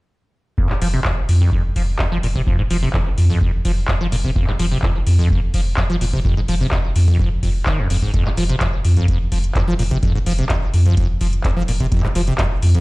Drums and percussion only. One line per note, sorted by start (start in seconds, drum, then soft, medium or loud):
0.58 kick loud
0.69 clap soft
0.82 open hi-hat loud
1.05 kick loud
1.05 clap loud
1.29 open hi-hat loud
1.52 kick loud
1.76 kick medium
1.76 open hi-hat medium
1.99 kick loud
1.99 clap loud
2.23 open hi-hat loud
2.35 kick medium
2.47 kick loud
2.71 open hi-hat loud
2.94 kick loud
2.94 clap loud
3.18 open hi-hat loud
3.41 kick loud
3.65 kick medium
3.65 open hi-hat loud
3.88 kick loud
3.88 clap loud
4.12 open hi-hat loud
4.24 kick medium
4.36 kick loud
4.47 clap soft
4.59 open hi-hat loud
4.82 kick loud
4.82 clap loud
5.07 open hi-hat loud
5.30 kick loud
5.54 kick medium
5.54 open hi-hat loud
5.77 kick loud
5.77 clap loud
6.01 open hi-hat loud
6.13 kick medium
6.25 kick loud
6.48 open hi-hat loud
6.71 kick loud
6.71 clap loud
6.96 open hi-hat loud
7.19 kick loud
7.43 kick medium
7.43 open hi-hat loud
7.66 kick loud
7.66 clap loud
7.90 open hi-hat loud
8.02 kick medium
8.14 kick loud
8.14 closed hi-hat medium
8.25 clap soft
8.37 open hi-hat loud
8.49 closed hi-hat soft
8.60 kick loud
8.60 clap loud
8.60 closed hi-hat medium
8.85 open hi-hat loud
8.97 closed hi-hat soft
9.08 kick loud
9.08 closed hi-hat medium
9.32 kick medium
9.32 open hi-hat loud
9.44 closed hi-hat medium
9.55 kick loud
9.55 clap loud
9.55 closed hi-hat soft
9.79 open hi-hat loud
9.91 kick medium
9.91 closed hi-hat soft
10.03 kick loud
10.03 closed hi-hat medium
10.26 open hi-hat loud
10.38 closed hi-hat soft
10.49 kick loud
10.49 clap loud
10.49 closed hi-hat medium
10.74 open hi-hat loud
10.86 closed hi-hat soft
10.97 kick loud
10.97 closed hi-hat medium
11.21 kick medium
11.21 open hi-hat medium
11.33 closed hi-hat medium
11.44 kick loud
11.44 clap loud
11.44 closed hi-hat medium
11.68 open hi-hat loud
11.80 kick medium
11.80 closed hi-hat soft
11.92 kick loud
11.92 closed hi-hat medium
12.03 clap soft
12.15 open hi-hat loud
12.27 closed hi-hat medium
12.38 kick loud
12.38 clap loud
12.38 closed hi-hat medium
12.62 open hi-hat loud
12.75 closed hi-hat soft